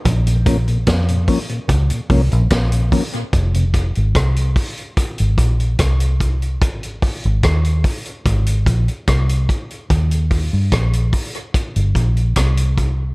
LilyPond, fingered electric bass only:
\new Staff \with { instrumentName = "Fingered electric bass" } { \clef bass \time 4/4 \key f \minor \tempo 4 = 73 bes,,4 f,8 r8 des,16 r16 c,16 bes,,16 bes,,8 r8 | f,,8. aes,,16 c,8 r8. aes,,16 bes,,8 c,4 | aes,,8. aes,,16 ees,8 r8 aes,,8 bes,,16 r16 c,8 r8 | ees,8. g,16 bes,,8 r8. g,,16 bes,,8 c,4 | }